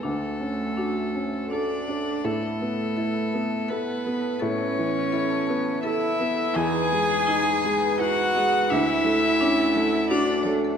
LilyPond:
<<
  \new Staff \with { instrumentName = "Violin" } { \time 3/4 \key a \lydian \tempo 4 = 84 a'2 d''4 | a'2 b'4 | cis''2 e''4 | gis''2 fis''4 |
e''2 d''8 r8 | }
  \new Staff \with { instrumentName = "Marimba" } { \time 3/4 \key a \lydian d'16 a'16 r8 d'16 a'16 a'16 a'16 d'16 a'16 cis''16 a'16 | a'16 a''16 r8 a'16 a''16 a''16 a''16 a'16 a''16 b''16 a''16 | a'16 a''16 r8 a'16 a''16 a''16 a''16 a'16 a''16 b''16 a''16 | e'16 b'16 r8 e'16 b'16 b'16 b'16 e'16 b'16 dis''16 b'16 |
d'16 a'16 r8 d'16 a'16 a'16 a'16 d'16 a'16 cis''16 a'16 | }
  \new Staff \with { instrumentName = "Harmonium" } { \time 3/4 \key a \lydian <a fis' a'>2. | <b e' a'>2.~ | <b e' a'>2. | <b dis' b'>2. |
<a fis' a'>2. | }
  \new Staff \with { instrumentName = "Cello" } { \time 3/4 \key a \lydian a2 d'4 | a2 b4 | cis'2 e'4 | gis'2 fis'4 |
e'2 d'8 r8 | }
  \new Staff \with { instrumentName = "Felt piano" } { \time 3/4 \key a \lydian d,8 cis'8 fis'8 cis'8 a'8 d'8 | a,8 b8 e'8 b8 a'8 b8 | a,8 e8 e'8 b8 a'8 b8 | e,8 gis8 dis'8 gis8 b'8 gis8 |
d,8 a8 cis'8 a8 fis'8 a8 | }
>>